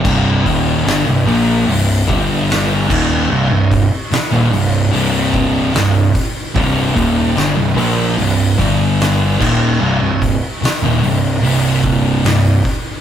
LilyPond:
<<
  \new Staff \with { instrumentName = "Distorted electric guitar" } { \clef bass \time 4/4 \key c \minor \tempo 4 = 74 <c, g, c>8 <ees, bes, ees>8 <g, d>16 <c, g,>16 <bes, f bes>8 <c, g,>8 <g, d g>4 <ees, bes, ees>8 | <c, g,>16 <c, g,>8 r8 <ees, bes,>16 <c, g,>8 <c, g, c>4 <c, g,>8 r8 | <c, g, c>8 <ees, bes, ees>8 <g, d>16 <c, g,>16 <bes, f bes>8 <c, g,>8 <g, d g>4 <ees, bes, ees>8 | <c, g,>16 <c, g,>8 r8 <ees, bes,>16 <c, g,>8 <c, g, c>4 <c, g,>8 r8 | }
  \new Staff \with { instrumentName = "Distorted electric guitar" } { \clef bass \time 4/4 \key c \minor <c, g, c>8 <ees, bes, ees>8 <g, d>16 <c, g,>16 <bes, f bes>8 <c, g,>8 <g, d g>4 <ees, bes, ees>8 | <c, g,>16 <c, g,>8 r8 <ees, bes,>16 <c, g,>8 <c, g, c>4 <c, g,>8 r8 | <c, g, c>8 <ees, bes, ees>8 <g, d>16 <c, g,>16 <bes, f bes>8 <c, g,>8 <g, d g>4 <ees, bes, ees>8 | <c, g,>16 <c, g,>8 r8 <ees, bes,>16 <c, g,>8 <c, g, c>4 <c, g,>8 r8 | }
  \new Staff \with { instrumentName = "Picked electric bass" } { \clef bass \time 4/4 \key c \minor c,,8 ees,,8 g,,16 c,,16 bes,,8 c,,8 g,,4 ees,,8 | c,,16 c,,8 r8 ees,,16 c,,8 c,,4 c,,8 r8 | c,,8 ees,,8 g,,16 c,,16 bes,,8 c,,8 g,,4 ees,,8 | c,,16 c,,8 r8 ees,,16 c,,8 c,,4 c,,8 r8 | }
  \new DrumStaff \with { instrumentName = "Drums" } \drummode { \time 4/4 <cymc bd>8 <hho bd>8 <hho sn>8 hho8 hho8 <hho bd>8 <hho sn>8 <cymc bd>8 | r8 <hho bd>8 <hho sn>8 hho8 hho8 <hho bd>8 <hho sn>8 <hho bd sn>8 | <hho bd>8 <hho bd>8 <hho sn>8 hho8 hho8 <hho bd>8 <hho sn>8 <cymc bd sn>8 | r8 <hho bd>8 <hho sn>8 hho8 hho8 <hho bd>8 <hho sn>8 <hho bd sn>8 | }
>>